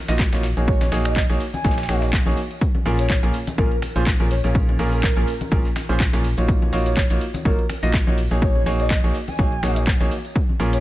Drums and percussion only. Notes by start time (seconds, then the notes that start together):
0.08 snare, closed hi-hat, tambourine, shaker
0.19 kick, snare, clap, tambourine, shaker
0.33 snare, tambourine, high conga, shaker
0.43 snare, open hi-hat, tambourine, shaker
0.57 closed hi-hat, tambourine
0.68 kick, tambourine, shaker
0.81 snare, closed hi-hat, tambourine, high conga, shaker
0.92 snare, open hi-hat, tambourine, shaker
1.05 finger snap, closed hi-hat, tambourine
1.16 kick, clap, tambourine, high conga, shaker
1.29 closed hi-hat, tambourine
1.40 open hi-hat, tambourine, shaker
1.53 closed hi-hat, tambourine, high conga
1.55 tambourine
1.64 kick, snare, tambourine, shaker
1.71 snare, shaker
1.78 snare, closed hi-hat, tambourine, shaker
1.83 snare, shaker
1.89 finger snap, open hi-hat, tambourine, high conga, shaker
2.02 snare, closed hi-hat, tambourine
2.13 kick, snare, clap, tambourine, shaker
2.26 tambourine, high conga
2.37 open hi-hat, tambourine, shaker
2.51 closed hi-hat, tambourine
2.61 kick, tambourine, shaker
2.75 tambourine, high conga
2.86 open hi-hat, tambourine, shaker
2.99 closed hi-hat, tambourine
3.09 kick, snare, clap, tambourine, high conga, shaker
3.23 closed hi-hat, tambourine
3.34 open hi-hat, tambourine, shaker
3.47 closed hi-hat, tambourine, high conga
3.58 kick, tambourine, shaker
3.72 closed hi-hat, tambourine
3.82 finger snap, open hi-hat, tambourine, high conga, shaker
3.96 closed hi-hat, tambourine
4.06 kick, snare, clap, tambourine, shaker
4.20 tambourine, high conga
4.31 open hi-hat, tambourine, shaker
4.44 snare, closed hi-hat, tambourine
4.55 kick, tambourine, shaker
4.69 tambourine, high conga
4.79 open hi-hat, tambourine, shaker
4.93 closed hi-hat, tambourine
5.03 kick, snare, clap, tambourine, high conga, shaker
5.17 closed hi-hat, tambourine
5.28 open hi-hat, tambourine, shaker
5.41 closed hi-hat, tambourine, high conga
5.52 kick, tambourine, shaker
5.65 snare, closed hi-hat, tambourine
5.76 finger snap, snare, open hi-hat, tambourine, high conga, shaker
5.89 closed hi-hat, tambourine
6.00 kick, clap, tambourine, shaker
6.13 snare, tambourine, high conga, shaker
6.24 open hi-hat, tambourine
6.37 closed hi-hat, tambourine, shaker
6.48 kick, tambourine, shaker
6.62 tambourine, high conga
6.73 open hi-hat, tambourine, shaker
6.86 closed hi-hat, tambourine
6.96 kick, snare, clap, tambourine, high conga, shaker
7.10 closed hi-hat, tambourine
7.21 open hi-hat, tambourine, shaker
7.34 closed hi-hat, tambourine, high conga
7.45 kick, tambourine, shaker
7.59 closed hi-hat, tambourine
7.69 finger snap, open hi-hat, tambourine, high conga, shaker
7.83 closed hi-hat, tambourine
7.94 kick, snare, clap, tambourine, shaker
8.07 tambourine, high conga
8.18 open hi-hat, tambourine, shaker
8.31 snare, closed hi-hat, tambourine
8.42 kick, tambourine, shaker
8.55 tambourine, high conga
8.66 open hi-hat, tambourine, shaker
8.80 closed hi-hat, tambourine
8.90 kick, snare, clap, tambourine, high conga, shaker
9.04 closed hi-hat, tambourine
9.14 open hi-hat, tambourine, shaker
9.28 closed hi-hat, tambourine, high conga
9.38 kick, tambourine, shaker
9.52 closed hi-hat, tambourine
9.63 finger snap, snare, open hi-hat, tambourine, high conga, shaker
9.76 closed hi-hat, tambourine
9.87 kick, clap, tambourine, shaker
10.01 closed hi-hat, tambourine, high conga
10.11 open hi-hat, tambourine, shaker
10.25 closed hi-hat, tambourine
10.36 kick, tambourine, shaker
10.49 tambourine, high conga
10.60 open hi-hat, tambourine, shaker
10.73 closed hi-hat, tambourine